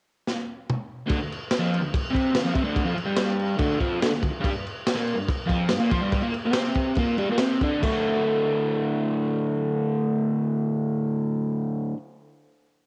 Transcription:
0.27 snare
0.69 mid tom
1.06 overdriven electric guitar D2 D3, kick, crash
1.18 overdriven electric guitar D2
1.32 crash
1.51 snare, crash
1.59 overdriven electric guitar F2 F3
1.74 crash
1.80 overdriven electric guitar D2
1.94 kick, crash
2.10 overdriven electric guitar C3 C4
2.15 kick, crash
2.33 overdriven electric guitar D2, snare, crash
2.44 overdriven electric guitar F2 F3
2.54 overdriven electric guitar C3 C4, kick, crash
2.63 overdriven electric guitar D2 D3
2.76 kick, crash
2.85 overdriven electric guitar F2 F3
2.96 muted overdriven electric guitar stroke, crash
3.05 overdriven electric guitar G2 G3
3.17 snare, crash
3.39 crash
3.57 overdriven electric guitar D2 D3, kick, crash
3.79 overdriven electric guitar F2 F3, kick, crash
4.01 overdriven electric guitar D2 D3, snare, crash
4.10 overdriven electric guitar D2
4.22 overdriven electric guitar D2, kick, crash
4.31 muted overdriven electric guitar stroke
4.40 overdriven electric guitar G2 G3, kick
4.45 crash
4.51 overdriven electric guitar G2
4.67 crash
4.87 snare, crash
4.95 overdriven electric guitar A#2 A#3
5.07 crash
5.15 overdriven electric guitar G2
5.29 kick, crash
5.46 overdriven electric guitar F2 F3, kick, crash
5.69 overdriven electric guitar G2, snare, crash
5.80 overdriven electric guitar A#2 A#3
5.91 overdriven electric guitar F3 F4, kick, crash
6.01 overdriven electric guitar G2 G3
6.12 kick, crash
6.22 overdriven electric guitar A#2 A#3
6.34 muted overdriven electric guitar stroke, crash
6.45 overdriven electric guitar C3 C4
6.53 snare, crash
6.75 kick, crash
6.95 overdriven electric guitar A#2 A#3, kick, crash
7.17 overdriven electric guitar G2 G3, crash
7.29 overdriven electric guitar A#2 A#3
7.38 overdriven electric guitar C3 C4, snare, crash
7.61 overdriven electric guitar D3 D4, kick, crash
7.81 overdriven electric guitar D2 A2 D3 A3 F#4, kick, crash

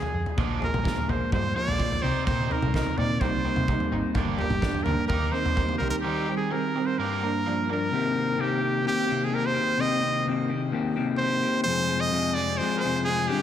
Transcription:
Already playing: trumpet G#4
0.02 floor tom
0.14 picked electric bass F2
0.26 floor tom
0.36 picked electric bass A#1, clean electric guitar A#2, overdriven electric guitar F3 G#3 D4, kick, floor tom
0.60 overdriven electric guitar F3 G#3, clean electric guitar G#4, floor tom
0.64 trumpet A#4
0.73 picked electric bass A#1, floor tom, mid tom
0.83 overdriven electric guitar F3 G#3, clean electric guitar D4, kick
0.87 snare
0.98 floor tom
1.07 picked electric bass A#1, overdriven electric guitar F3 G#3, clean electric guitar A#3, trumpet C5, floor tom
1.31 picked electric bass G2, clean electric guitar F3, overdriven electric guitar F3 G#3, trumpet C5, kick, floor tom
1.56 overdriven electric guitar F3 G#3, clean electric guitar A#3, trumpet D5
1.67 picked electric bass A#1, floor tom
1.78 overdriven electric guitar F3 G#3, clean electric guitar F3, kick
1.92 floor tom
2.02 picked electric bass C2, clean electric guitar C3, overdriven electric guitar C4 D#4 G4, trumpet C5
2.26 picked electric bass A#2, clean electric guitar C3, overdriven electric guitar C4 D#4 G4, trumpet C5, kick, floor tom
2.50 overdriven electric guitar C4 D#4, clean electric guitar A#4, trumpet A#4, floor tom
2.62 picked electric bass C2, floor tom, mid tom
2.74 overdriven electric guitar C4 D#4, clean electric guitar D#4, trumpet A#4, kick, snare
2.87 floor tom
2.98 picked electric bass A#2, clean electric guitar A#3, overdriven electric guitar C4 D#4, trumpet D5, floor tom
3.21 picked electric bass C2, clean electric guitar G3, overdriven electric guitar C4 D#4, trumpet C5, kick, floor tom
3.45 clean electric guitar A#3, overdriven electric guitar C4 D#4
3.56 picked electric bass C3, floor tom
3.68 clean electric guitar G3, overdriven electric guitar C4 D#4, kick
3.80 floor tom
3.91 picked electric bass G#1, overdriven electric guitar C4 D#4, clean electric guitar D#4
4.15 picked electric bass G1, clean electric guitar G2, overdriven electric guitar A#3 D4 G4, kick, floor tom
4.39 overdriven electric guitar A#3 D4, trumpet G4, clean electric guitar A#4, floor tom
4.50 picked electric bass G1, floor tom, mid tom
4.62 overdriven electric guitar A#3 D4, clean electric guitar D4, kick, snare
4.74 floor tom
4.84 picked electric bass D2, overdriven electric guitar A#3 D4, clean electric guitar A#3, trumpet A#4, floor tom
5.08 picked electric bass D#2, clean electric guitar D#3, overdriven electric guitar A#3 D#4 G4, trumpet A#4, kick, floor tom
5.32 overdriven electric guitar A#3 D#4, clean electric guitar C4, trumpet C5
5.45 picked electric bass D#2, floor tom
5.56 clean electric guitar G3, overdriven electric guitar A#3 D#4, kick
5.69 floor tom
5.78 picked electric bass C2, overdriven electric guitar A#3 D#4, trumpet A#4
5.82 clean electric guitar G4
5.90 trumpet A#4
6.01 clean electric guitar D#3, overdriven electric guitar G3 C4 D#4, trumpet G4
6.28 overdriven electric guitar G3 C4, clean electric guitar A#4
6.37 trumpet G#4
6.51 overdriven electric guitar G3 C4, clean electric guitar G4, trumpet A#4
6.74 overdriven electric guitar G3 C4, clean electric guitar C4
6.86 trumpet C5
6.98 clean electric guitar G2, overdriven electric guitar A#3 D4 G4, trumpet A#4
7.22 clean electric guitar A#3, overdriven electric guitar A#3 D4
7.46 clean electric guitar F3, overdriven electric guitar A#3 D4
7.70 overdriven electric guitar A#3 D4, clean electric guitar D4, trumpet A#4
7.91 clean electric guitar C3 D#3 A#3 C4 G4
8.14 clean electric guitar A#3 C4 G4
8.38 clean electric guitar C3 D#3 A#3 C4 G4, trumpet G4
8.61 clean electric guitar A#3 C4 G4
8.84 clean electric guitar D#3 A#3 C4 G4, trumpet G4
9.07 clean electric guitar C3 D#3 A#3 C4 G4
9.24 trumpet G#4
9.30 clean electric guitar D#3 A#3 C4 G4
9.35 trumpet A#4
9.46 trumpet C5
9.54 clean electric guitar A#3 C4 G4
9.78 clean electric guitar C3 D#3 A#3 C4 G4, trumpet D#5
10.01 clean electric guitar A#3 C4 G4
10.26 clean electric guitar C3 D#3 A#3 C4 G4
10.50 clean electric guitar A#3 C4 G4
10.71 clean electric guitar D#3 A#3 C4 G4
10.96 clean electric guitar C3 D#3 A#3 C4 G4
11.18 clean electric guitar D#3 A#3, trumpet C5
11.22 clean electric guitar C4 G4
11.42 clean electric guitar A#3 C4 G4
11.64 clean electric guitar F2 C3 F3, trumpet C5
11.68 clean electric guitar G#3 C4 G#4
11.87 clean electric guitar F3 G#3 C4 G#4
12.00 trumpet D#5
12.11 clean electric guitar F2 C3 F3 G#3 C4 G#4
12.34 clean electric guitar G#3 C4 G#4, trumpet D5
12.39 clean electric guitar F3
12.58 clean electric guitar F3 G#3, trumpet C5
12.62 clean electric guitar C4 G#4
12.77 trumpet A#4 C5
12.83 clean electric guitar F2 C3 F3 G#3 C4 G#4
13.04 clean electric guitar F3, trumpet G#4
13.08 clean electric guitar G#3 C4 G#4
13.28 clean electric guitar G2 G3 C4 D4 G4, trumpet G4
13.32 clean electric guitar D3

